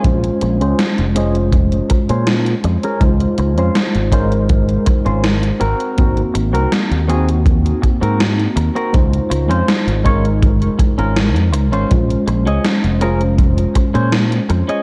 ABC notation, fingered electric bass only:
X:1
M:4/4
L:1/16
Q:1/4=81
K:Db
V:1 name="Fingered electric bass" clef=bass
B,,, z B,,, D,, z F,,,4 z2 B,,2 z F,, z | D,, z D,, F,, z A,,,4 z2 A,,,2 z A,,, z | A,,, z A,,, C,, z E,,4 z2 A,,2 z E,, z | D,, z D,, F,, z A,,,4 z2 A,,,2 F,, D,, A,,, |
B,,, z B,,, D,, z F,,,4 z2 B,,2 z F,, z |]